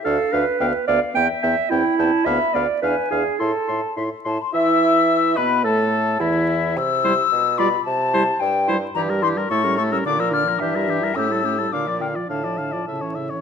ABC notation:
X:1
M:2/4
L:1/16
Q:1/4=108
K:Am
V:1 name="Flute"
f4 g2 f2 | e4 g2 a2 | b2 z2 ^g4 | a4 e2 a c' |
e'6 b2 | a4 e4 | e'6 b2 | a4 g2 z2 |
[K:Aphr] b2 c'2 ^c'2 c' e' | d' e' f'2 e4 | e'4 d'2 g2 | a6 z2 |]
V:2 name="Oboe"
f2 f2 f2 f2 | g2 g2 g2 g2 | f2 f2 f2 f2 | c'2 c'2 c'2 c'2 |
e6 B2 | A4 E4 | z2 c z3 d z | z2 c z3 c z |
[K:Aphr] G B G B A B A B | d B d B G B G B | G A G A f d f d | f d f d e ^c e c |]
V:3 name="Clarinet"
A2 B4 d2 | g2 e2 E4 | e2 d2 B2 ^G2 | A4 z4 |
e6 B2 | A4 E4 | z2 E z3 F z | z2 E z3 E z |
[K:Aphr] E G E G E ^C E C | D F D F D E D E | ^C E C E D F D F | D F D F E ^C E C |]
V:4 name="French horn" clef=bass
D2 D2 B,2 B,2 | B,2 B,2 C2 C2 | B,2 B,2 D2 D2 | E2 E2 E2 E2 |
E6 B,2 | A,4 E,4 | z2 G, z3 G, z | z2 G, z3 G, z |
[K:Aphr] E, G, E, G, A, G, A, G, | D, F, D, F, E, G, E, G, | A, G, A, G, D, F, D, F, | D, F, D, F, ^C, E, C, E, |]
V:5 name="Bassoon" clef=bass
D,,2 D,,2 D,,2 D,,2 | E,,2 E,,2 E,,2 E,,2 | D,,2 D,,2 E,,2 E,,2 | A,,2 A,,2 A,,2 A,,2 |
E,6 B,,2 | A,,4 E,,4 | C,4 B,,4 | C,4 G,,4 |
[K:Aphr] G,,4 A,,4 | B,,4 G,,4 | A,,4 B,,4 | A,,4 A,,4 |]